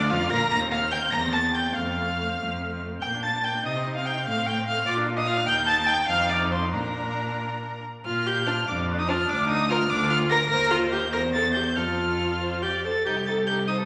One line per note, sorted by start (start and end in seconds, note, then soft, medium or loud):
0.00 0.12 D2 loud
0.00 0.12 D4 loud
0.00 0.12 D5 loud
0.10 0.30 F2 loud
0.10 0.31 F4 loud
0.10 0.29 F5 loud
0.10 0.32 F6 loud
0.30 0.39 A#2 loud
0.30 0.50 A#4 loud
0.30 0.49 A#5 loud
0.30 0.50 A#6 loud
0.50 1.05 D#2 loud
0.50 0.63 A#3 medium
0.50 0.58 A#5 loud
0.50 0.59 A#6 loud
0.61 0.73 C4 medium
0.71 0.83 A#3 medium
0.71 0.79 F5 loud
0.71 0.93 F6 loud
0.82 0.91 C4 medium
0.91 1.04 A#3 medium
0.91 1.00 G5 medium
0.91 1.12 G6 loud
1.02 1.12 C4 medium
1.11 1.68 E2 medium
1.11 1.24 A#3 medium
1.11 1.20 A#5 loud
1.11 1.32 A#6 loud
1.23 1.35 C4 medium
1.32 1.46 A#3 medium
1.32 1.40 A5 medium
1.32 1.56 A6 loud
1.44 1.54 C4 medium
1.53 1.67 A#3 medium
1.53 1.76 G5 medium
1.53 1.77 G6 loud
1.65 1.76 C4 medium
1.74 2.31 F2 medium
1.74 1.88 A3 medium
1.74 2.80 F5 medium
1.74 2.81 F6 medium
1.87 1.98 C4 medium
1.97 2.08 A3 medium
2.07 2.17 C4 soft
2.18 2.30 A3 soft
2.29 2.40 C4 soft
2.38 2.95 F2 medium
2.38 2.51 A3 medium
2.50 2.60 C4 soft
2.61 2.73 A3 soft
2.72 2.84 C4 soft
2.82 2.94 A3 soft
2.93 3.03 C4 soft
3.02 3.61 A#2 medium
3.02 3.15 A#3 medium
3.02 3.10 G5 medium
3.02 3.24 G6 medium
3.14 3.25 D4 medium
3.23 3.35 A#3 medium
3.23 3.46 A5 medium
3.23 3.46 A6 loud
3.33 3.44 D4 medium
3.44 3.56 A#3 medium
3.44 3.65 G5 medium
3.44 3.65 G6 medium
3.54 3.65 D4 medium
3.65 4.29 C3 medium
3.65 3.78 D#4 medium
3.65 3.95 D#5 medium
3.65 3.74 D#6 medium
3.76 3.88 C4 medium
3.87 3.99 D#4 medium
3.96 4.07 C4 medium
3.96 4.07 F5 medium
3.96 4.08 F6 medium
4.06 4.19 D#4 medium
4.06 4.26 G5 medium
4.06 4.27 G6 medium
4.18 4.28 C4 medium
4.27 4.86 A2 medium
4.27 4.39 A3 medium
4.27 4.48 F5 medium
4.27 4.47 F6 medium
4.38 4.49 C4 medium
4.47 4.60 A3 medium
4.47 4.66 G5 medium
4.47 4.56 G6 loud
4.58 4.67 C4 medium
4.67 4.79 A3 medium
4.67 4.85 F5 medium
4.67 4.87 F6 loud
4.77 4.86 C4 medium
4.86 5.46 A#2 medium
4.86 4.98 F4 medium
4.86 4.94 D5 medium
4.86 4.96 D6 loud
4.97 5.08 D4 medium
5.06 5.18 F4 medium
5.17 5.26 D4 medium
5.17 5.21 D#5 medium
5.17 5.29 D#6 loud
5.27 5.38 F4 medium
5.27 5.46 F5 loud
5.27 5.50 F6 loud
5.37 5.47 D4 medium
5.47 6.05 D#2 medium
5.47 6.05 D#4 medium
5.47 5.55 G5 loud
5.47 5.70 G6 loud
5.67 5.88 A5 loud
5.67 5.90 A6 loud
5.87 6.07 G5 loud
5.87 6.08 G6 loud
6.08 6.75 F2 loud
6.08 6.75 D#4 medium
6.08 6.31 F5 loud
6.08 6.29 F6 loud
6.30 6.51 D5 loud
6.30 6.38 D6 loud
6.51 6.59 C5 medium
6.51 6.73 C6 medium
6.73 7.85 A#2 medium
6.73 7.85 D4 medium
6.73 7.82 A#4 medium
6.73 7.82 A#5 medium
8.05 8.57 A#2 medium
8.05 8.28 F4 medium
8.05 8.28 F6 loud
8.26 8.46 G4 medium
8.26 8.48 G6 loud
8.46 8.57 D4 medium
8.46 8.54 F4 medium
8.46 8.67 F6 loud
8.67 9.19 F2 medium
8.67 9.00 D4 medium
8.67 8.76 D6 medium
8.98 9.10 D#4 medium
8.98 9.10 D#6 medium
9.08 9.19 D4 medium
9.08 9.28 F4 medium
9.08 9.31 F6 loud
9.28 9.80 D2 loud
9.28 9.49 D4 loud
9.28 9.49 D6 loud
9.49 9.69 D#4 loud
9.49 9.71 D#6 loud
9.69 9.77 F4 loud
9.69 9.80 A#4 medium
9.69 9.91 F6 loud
9.90 10.41 D2 loud
9.90 10.11 D4 loud
9.90 10.09 D6 loud
10.10 10.32 F4 loud
10.10 10.18 F6 loud
10.29 10.49 A#4 loud
10.29 10.40 A#4 loud
10.29 10.49 A#6 loud
10.50 11.15 D#2 loud
10.50 10.72 A#4 loud
10.50 11.10 C5 medium
10.50 10.70 A#6 loud
10.70 10.91 F4 loud
10.70 10.78 F6 loud
10.92 11.00 G4 medium
10.92 11.12 G6 loud
11.13 11.78 E2 loud
11.13 11.21 A#4 loud
11.13 11.78 C5 medium
11.13 11.21 A#6 loud
11.33 11.42 A4 medium
11.33 11.53 A6 loud
11.54 11.63 G4 medium
11.54 11.77 G6 loud
11.76 12.85 F2 medium
11.76 12.64 F4 medium
11.76 12.37 A4 medium
11.76 12.62 F6 loud
12.42 12.61 C5 medium
12.62 12.86 G4 medium
12.62 12.84 D5 medium
12.62 12.71 G6 medium
12.84 13.05 A4 medium
12.84 12.93 C5 medium
12.84 13.08 A6 medium
13.05 13.85 C2 medium
13.05 13.19 D#4 medium
13.05 13.13 G4 medium
13.05 13.26 G6 medium
13.17 13.30 G4 medium
13.26 13.40 D#4 medium
13.26 13.47 A4 medium
13.26 13.35 A6 medium
13.38 13.48 G4 medium
13.47 13.60 D#4 medium
13.47 13.67 G4 medium
13.47 13.55 G6 loud
13.59 13.68 G4 medium
13.67 13.76 D#4 medium
13.67 13.80 C5 medium
13.67 13.75 D#6 loud
13.78 13.85 A4 medium